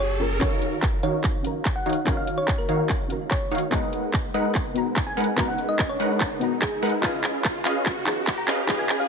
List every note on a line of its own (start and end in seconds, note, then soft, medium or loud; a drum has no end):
0.00 0.39 F#1 medium
0.00 0.22 C#5 medium
0.00 riser medium
0.19 0.38 C#4 medium
0.19 0.38 F4 medium
0.19 0.39 G#4 medium
0.19 0.39 A#4 loud
0.39 1.01 D#3 medium
0.39 1.41 C#4 medium
0.39 1.01 D#4 medium
0.39 1.01 F#4 medium
0.39 1.42 F#4 medium
0.39 1.43 A#4 medium
0.39 1.01 C#5 medium
0.39 0.58 C#5 loud
0.39 1.42 F5 medium
0.39 1.01 F5 loud
0.39 kick loud
0.39 clap soft
0.39 closed hi-hat medium
0.39 riser medium
0.62 closed hi-hat medium
0.82 kick loud
0.82 clap soft
0.82 closed hi-hat medium
1.03 1.83 D#3 medium
1.03 1.83 D#4 medium
1.03 1.83 F#4 medium
1.03 1.20 C#5 medium
1.03 1.83 C#5 medium
1.03 1.83 F5 medium
1.03 closed hi-hat medium
1.24 kick loud
1.24 clap soft
1.24 closed hi-hat medium
1.43 2.03 C#4 medium
1.43 2.04 F#4 medium
1.43 2.04 F5 medium
1.43 closed hi-hat medium
1.47 2.05 A#4 medium
1.65 kick medium
1.65 clap medium
1.65 closed hi-hat medium
1.76 1.98 F#5 loud
1.86 1.95 D#3 medium
1.86 1.95 D#4 medium
1.86 1.95 F#4 medium
1.86 1.95 C#5 medium
1.86 1.95 F5 medium
1.86 closed hi-hat medium
1.89 closed hi-hat medium
1.93 closed hi-hat medium
2.05 2.66 D#3 medium
2.05 3.07 C#4 medium
2.05 2.66 D#4 medium
2.05 2.66 F#4 medium
2.05 3.08 F#4 medium
2.05 3.09 A#4 medium
2.05 2.66 C#5 medium
2.05 3.07 F5 medium
2.05 2.66 F5 loud
2.05 kick loud
2.05 clap medium
2.05 closed hi-hat medium
2.17 2.28 F5 medium
2.27 closed hi-hat medium
2.38 2.49 C#5 medium
2.48 kick loud
2.48 clap medium
2.48 closed hi-hat medium
2.58 2.81 A#4 medium
2.69 3.49 D#3 medium
2.69 3.49 D#4 medium
2.69 3.49 F#4 medium
2.69 3.49 C#5 medium
2.69 3.49 F5 medium
2.69 closed hi-hat medium
2.89 kick medium
2.89 clap medium
2.89 closed hi-hat medium
3.08 3.69 C#4 medium
3.08 3.70 F#4 medium
3.08 3.71 A#4 medium
3.08 3.69 F5 medium
3.08 closed hi-hat medium
3.31 3.53 C#5 medium
3.31 kick medium
3.31 clap medium
3.31 closed hi-hat medium
3.51 3.60 D#3 medium
3.51 3.60 D#4 medium
3.51 3.60 F#4 medium
3.51 3.60 C#5 medium
3.51 3.60 F5 medium
3.51 closed hi-hat medium
3.55 closed hi-hat medium
3.58 closed hi-hat medium
3.70 4.32 G#3 medium
3.70 4.72 B3 medium
3.70 4.73 D#4 medium
3.70 4.32 D#4 medium
3.70 4.73 F#4 medium
3.70 4.32 A#4 medium
3.70 4.32 B4 medium
3.70 3.89 D#5 loud
3.70 4.32 F#5 loud
3.70 4.74 A#5 medium
3.70 kick loud
3.70 clap medium
3.70 closed hi-hat medium
3.93 closed hi-hat medium
4.13 kick loud
4.13 clap medium
4.13 closed hi-hat medium
4.34 5.14 G#3 medium
4.34 5.15 D#4 medium
4.34 5.15 A#4 medium
4.34 5.15 B4 medium
4.34 4.51 D#5 medium
4.34 5.15 F#5 medium
4.34 closed hi-hat medium
4.55 kick loud
4.55 clap medium
4.55 closed hi-hat medium
4.74 5.34 B3 medium
4.74 5.35 D#4 medium
4.74 5.36 F#4 medium
4.74 5.36 A#5 medium
4.74 closed hi-hat medium
4.96 kick medium
4.96 clap medium
4.96 closed hi-hat medium
5.07 5.29 G#5 medium
5.17 5.26 G#3 medium
5.17 5.26 D#4 medium
5.17 5.26 A#4 medium
5.17 5.26 B4 medium
5.17 5.26 F#5 medium
5.17 closed hi-hat soft
5.20 closed hi-hat medium
5.24 closed hi-hat medium
5.36 5.97 G#3 medium
5.36 6.38 B3 medium
5.36 6.38 D#4 medium
5.36 5.97 D#4 medium
5.36 6.39 F#4 medium
5.36 5.97 A#4 medium
5.36 5.97 B4 medium
5.36 5.97 F#5 loud
5.36 6.40 A#5 loud
5.36 kick loud
5.36 clap medium
5.36 closed hi-hat medium
5.48 5.59 F#5 medium
5.58 closed hi-hat medium
5.69 5.80 D#5 medium
5.79 kick loud
5.79 clap medium
5.79 closed hi-hat medium
5.89 6.12 C#5 medium
6.00 6.80 G#3 medium
6.00 6.80 D#4 medium
6.00 6.80 A#4 medium
6.00 6.80 B4 medium
6.00 6.80 F#5 medium
6.00 closed hi-hat medium
6.20 kick medium
6.20 clap medium
6.20 closed hi-hat medium
6.39 7.00 B3 medium
6.39 7.00 D#4 medium
6.39 7.01 F#4 medium
6.39 7.02 A#5 medium
6.39 closed hi-hat medium
6.62 6.84 G#4 medium
6.62 kick medium
6.62 clap medium
6.62 closed hi-hat medium
6.83 6.92 G#3 medium
6.83 6.92 D#4 medium
6.83 6.92 A#4 medium
6.83 6.92 B4 medium
6.83 6.92 F#5 medium
6.83 closed hi-hat soft
6.86 closed hi-hat medium
6.89 closed hi-hat medium
7.01 7.63 C#4 medium
7.01 8.03 D#4 medium
7.01 8.04 F4 medium
7.01 7.63 G#4 medium
7.01 8.04 G#4 medium
7.01 7.63 B4 medium
7.01 7.63 D#5 medium
7.01 7.20 F5 loud
7.01 7.63 F5 loud
7.01 kick loud
7.01 clap medium
7.01 closed hi-hat medium
7.05 8.05 B4 medium
7.24 clap medium
7.24 closed hi-hat medium
7.45 kick loud
7.45 clap medium
7.45 closed hi-hat medium
7.65 8.46 C#4 medium
7.65 8.46 G#4 medium
7.65 8.46 B4 medium
7.65 8.46 D#5 medium
7.65 7.82 F5 medium
7.65 8.46 F5 medium
7.65 clap medium
7.65 closed hi-hat medium
7.86 kick loud
7.86 clap medium
7.86 closed hi-hat medium
8.05 8.65 D#4 medium
8.05 8.66 F4 medium
8.05 8.67 G#4 medium
8.05 clap medium
8.05 closed hi-hat medium
8.09 8.67 B4 medium
8.27 kick medium
8.27 clap medium
8.27 closed hi-hat medium
8.38 8.60 A#5 medium
8.48 8.57 C#4 medium
8.48 8.57 G#4 medium
8.48 8.57 B4 medium
8.48 8.57 D#5 medium
8.48 8.57 F5 medium
8.48 clap medium
8.48 closed hi-hat soft
8.51 closed hi-hat medium
8.55 closed hi-hat medium
8.67 9.08 C#4 loud
8.67 9.08 D#4 medium
8.67 9.08 F4 medium
8.67 9.08 G#4 medium
8.67 9.08 B4 medium
8.67 9.08 D#5 medium
8.67 9.08 F5 loud
8.67 kick loud
8.67 clap medium
8.67 closed hi-hat medium
8.71 9.08 B4 medium
8.79 8.90 G#5 medium
8.89 clap medium
8.89 closed hi-hat medium
9.00 9.08 F5 medium